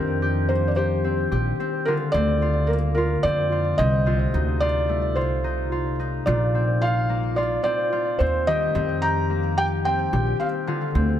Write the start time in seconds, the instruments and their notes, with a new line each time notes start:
Already playing: upright bass F2, harp D#3 C4 D4 F4 G4, felt piano A#4
0.22 harp G4
0.49 harp A#3, felt piano C5
0.68 felt piano D5
0.76 harp G4, felt piano C5
1.04 harp C4
1.32 upright bass A#1, harp G4
1.60 harp C4
1.85 harp D3 F4, felt piano A#4
2.12 upright bass D2, harp C4, felt piano D5
2.42 harp F4
2.67 harp A#3, felt piano A#4
2.95 harp F4, felt piano A#4
3.23 upright bass F2, harp C4, felt piano D5
3.52 harp F4
3.78 upright bass C2, harp C4, felt piano D#5
4.06 harp C3 F4
4.34 upright bass D2, harp D#4
4.60 harp F4, felt piano D5
4.89 harp A3
5.16 upright bass C2, harp F4, felt piano C5
5.44 harp D#4
5.72 harp F4
6.00 harp D#4
6.26 upright bass A#1, harp A#2 F4, felt piano D5
6.55 harp C4
6.82 harp F4, felt piano F5
7.10 harp A#3
7.36 harp F4, felt piano D5
7.64 harp C4, felt piano D5
7.93 harp F4
8.19 upright bass D#2, harp C4, felt piano C5
8.47 harp D#3 G4, felt piano D#5
8.75 upright bass F2, harp C4
9.02 harp G4, felt piano A#5
9.30 harp A#3
9.57 harp G4, felt piano G5
9.85 harp C4, felt piano G5
10.13 upright bass A#1, harp G4
10.40 harp C4, felt piano F5
10.67 harp D3 F4
10.95 upright bass D2, harp C4